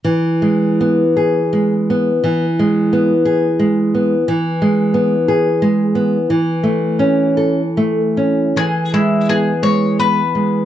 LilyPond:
<<
  \new Staff \with { instrumentName = "Mandolin" } { \time 6/8 \key e \major \tempo 4. = 57 r2. | r2. | r2. | r2. |
gis'8 e'8 gis'8 cis''8 b'4 | }
  \new Staff \with { instrumentName = "Nylon-string guitar" } { \time 6/8 \key e \major e8 gis8 b8 gis'8 gis8 b8 | e8 gis8 b8 gis'8 gis8 b8 | e8 gis8 b8 gis'8 gis8 b8 | e8 a8 cis'8 a'8 a8 cis'8 |
e8 gis8 b8 gis8 b8 gis8 | }
>>